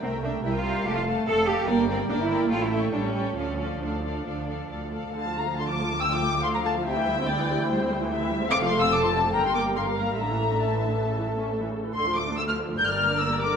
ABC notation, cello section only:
X:1
M:4/4
L:1/16
Q:1/4=142
K:Dm
V:1 name="Cello section"
C2 D2 E F3 G F3 A2 G2 | B,2 C2 D E3 F E3 D ^C3 | ^C4 D8- D2 z2 | D,,16- |
D,,16 | F,,8 G,,8 | A,,12- A,,2 z2 | D,,8 G,,8 |]